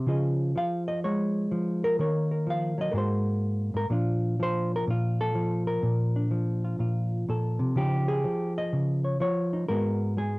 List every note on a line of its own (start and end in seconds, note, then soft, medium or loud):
0.06 0.54 C#3 medium
0.06 0.54 F3 soft
0.06 1.97 F4 soft
0.06 1.83 G#4 soft
0.06 0.57 D#5 soft
0.56 1.50 F3 medium
0.56 0.87 F5 loud
0.88 1.03 D#5 medium
1.04 1.98 G#3 medium
1.04 1.99 C#5 medium
1.51 1.99 F3 medium
1.84 1.99 A#4 loud
1.99 2.93 D#3 medium
1.99 2.94 A#3 soft
1.99 2.31 A#4 soft
1.99 2.48 C#5 soft
2.31 2.91 A#4 soft
2.47 2.78 F3 soft
2.47 2.80 F5 medium
2.78 2.94 F#3 medium
2.78 2.96 D#5 medium
2.92 3.73 G#2 medium
2.92 3.89 G#3 soft
2.92 3.91 A#3 soft
2.92 3.89 F#4 soft
2.92 2.95 A#4 medium
2.98 3.76 C5 medium
3.74 3.89 G#2 medium
3.74 3.86 A#4 loud
3.90 4.87 A#2 medium
3.90 4.39 F3 soft
3.90 5.82 D4 soft
3.90 4.90 F4 soft
4.40 5.34 F3 medium
4.40 4.72 C5 loud
4.76 4.84 A#4 loud
4.87 5.81 A#2 medium
4.87 5.69 F4 medium
5.21 5.67 A4 medium
5.35 6.30 F3 medium
5.67 7.76 A#4 medium
5.82 6.78 A#2 medium
6.16 7.75 D4 soft
6.31 7.75 F3 soft
6.65 6.79 F4 soft
6.79 7.27 A#2 medium
6.79 7.29 F4 soft
7.29 7.60 A#2 medium
7.29 7.77 A4 medium
7.59 7.76 C3 medium
7.76 8.24 C#3 medium
7.76 8.23 F3 soft
7.76 9.52 D#4 soft
7.76 8.56 G4 medium
8.08 9.04 G#4 medium
8.24 9.19 F3 medium
8.58 9.04 D#5 medium
8.73 9.21 C#3 medium
9.04 9.20 C#5 soft
9.20 9.69 F3 medium
9.20 9.68 C#5 medium
9.53 9.67 D#4 soft
9.68 10.39 G#2 medium
9.68 10.17 G#3 soft
9.68 10.39 B3 soft
9.68 10.39 F#4 soft
9.68 10.17 A#4 medium
10.17 10.39 G#3 medium
10.17 10.39 G#4 medium